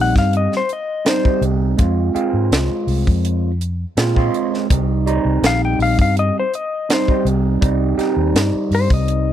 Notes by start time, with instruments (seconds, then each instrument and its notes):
Already playing: fingered electric bass A#1, tine electric piano G3 C4 D#4
0.01 electric slide guitar F#5
0.16 fingered electric bass G2, electric slide guitar F5, kick, snare
0.33 electric slide guitar D#5, closed hi-hat
0.52 snare
0.57 electric slide guitar C5
0.69 electric slide guitar D#5, closed hi-hat
1.05 tine electric piano G3 C4 D#4, electric slide guitar C5, snare, closed hi-hat
1.24 tine electric piano G3 C4 D#4, kick
1.41 fingered electric bass C2, closed hi-hat
1.77 fingered electric bass F2, tine electric piano G#3 C4 F4, kick, closed hi-hat
2.14 tine electric piano G#3 C4 F4, muted fingered electric bass stroke, closed hi-hat
2.34 fingered electric bass G#2
2.51 fingered electric bass C2, snare, closed hi-hat
2.70 muted fingered electric bass stroke
2.87 fingered electric bass C2, open hi-hat
3.07 fingered electric bass F2, kick
3.25 closed hi-hat
3.61 closed hi-hat
3.97 fingered electric bass A#2, tine electric piano G#3 C4 F4, snare, closed hi-hat
4.15 tine electric piano G#3 C4 F4, kick
4.34 closed hi-hat
4.54 snare
4.70 fingered electric bass C2, tine electric piano G3 C4 D#4, kick, closed hi-hat
5.06 tine electric piano G3 C4 D#4, closed hi-hat
5.25 fingered electric bass C2
5.42 fingered electric bass A#1, snare, closed hi-hat
5.46 electric slide guitar F5
5.65 electric slide guitar G5
5.79 fingered electric bass A#1, electric slide guitar F5, open hi-hat
5.99 fingered electric bass G2, electric slide guitar F5, kick
6.17 electric slide guitar D#5, closed hi-hat
6.40 electric slide guitar C5
6.54 electric slide guitar D#5, closed hi-hat
6.89 tine electric piano G3 C4 D#4, electric slide guitar C5, snare, closed hi-hat
7.08 tine electric piano G3 C4 D#4, kick
7.25 fingered electric bass C2, closed hi-hat
7.61 fingered electric bass C2, tine electric piano G3 C4 D#4, kick, closed hi-hat
7.97 tine electric piano G3 C4 D#4, muted fingered electric bass stroke, snare, closed hi-hat
8.16 fingered electric bass D#2
8.34 fingered electric bass G2, snare, closed hi-hat
8.54 muted fingered electric bass stroke
8.71 fingered electric bass G2, electric slide guitar C5, open hi-hat
8.90 fingered electric bass C2, electric slide guitar D#5, kick
9.08 closed hi-hat